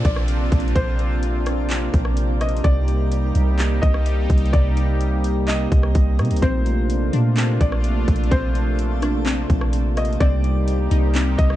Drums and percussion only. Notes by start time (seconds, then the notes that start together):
0.05 kick, closed hi-hat
0.16 cross-stick
0.28 closed hi-hat
0.52 kick, closed hi-hat
0.60 closed hi-hat
0.68 closed hi-hat
0.76 kick, closed hi-hat
0.99 closed hi-hat
1.23 closed hi-hat
1.46 cross-stick, closed hi-hat
1.70 clap, closed hi-hat
1.94 kick, closed hi-hat
2.05 cross-stick
2.17 closed hi-hat
2.41 cross-stick, closed hi-hat
2.49 closed hi-hat
2.57 closed hi-hat
2.64 kick, closed hi-hat
2.88 closed hi-hat
3.12 closed hi-hat
3.35 closed hi-hat
3.59 clap, closed hi-hat
3.83 kick, closed hi-hat
3.94 cross-stick
4.06 closed hi-hat
4.30 kick, closed hi-hat
4.38 closed hi-hat
4.46 closed hi-hat
4.53 kick, closed hi-hat
4.77 closed hi-hat
5.01 closed hi-hat
5.24 closed hi-hat
5.48 clap, closed hi-hat
5.72 kick, closed hi-hat
5.83 cross-stick
5.95 kick, closed hi-hat
6.19 cross-stick, closed hi-hat
6.25 closed hi-hat
6.31 closed hi-hat
6.36 closed hi-hat
6.42 kick, closed hi-hat
6.66 closed hi-hat
6.90 closed hi-hat
7.13 closed hi-hat
7.37 clap, closed hi-hat
7.61 kick, closed hi-hat
7.72 cross-stick
7.84 closed hi-hat
8.08 kick, closed hi-hat
8.16 closed hi-hat
8.24 closed hi-hat
8.31 kick, closed hi-hat
8.55 closed hi-hat
8.79 closed hi-hat
9.02 cross-stick, closed hi-hat
9.26 clap, closed hi-hat
9.50 kick, closed hi-hat
9.61 cross-stick
9.73 closed hi-hat
9.97 cross-stick, closed hi-hat
10.05 closed hi-hat
10.13 closed hi-hat
10.20 kick, closed hi-hat
10.44 closed hi-hat
10.68 closed hi-hat
10.91 closed hi-hat
11.15 clap, closed hi-hat
11.39 kick, closed hi-hat
11.50 cross-stick